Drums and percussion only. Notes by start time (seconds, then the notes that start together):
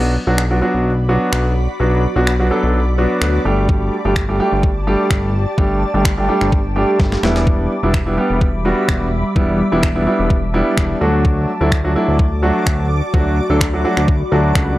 0.38 finger snap
1.33 finger snap
2.27 finger snap
3.22 finger snap
3.69 kick
4.16 finger snap, kick
4.63 kick
5.11 finger snap, kick
5.58 kick
6.05 finger snap, kick
6.41 finger snap
6.52 kick
7.00 kick, snare
7.12 snare
7.23 snare
7.36 snare
7.47 kick
7.94 finger snap, kick
8.41 kick
8.89 finger snap, kick
9.36 kick
9.83 finger snap, kick
10.30 kick
10.77 finger snap, kick
11.25 kick
11.72 finger snap, kick
12.19 kick
12.66 finger snap, kick
13.14 kick
13.61 finger snap, kick
13.97 finger snap
14.08 kick
14.55 finger snap, kick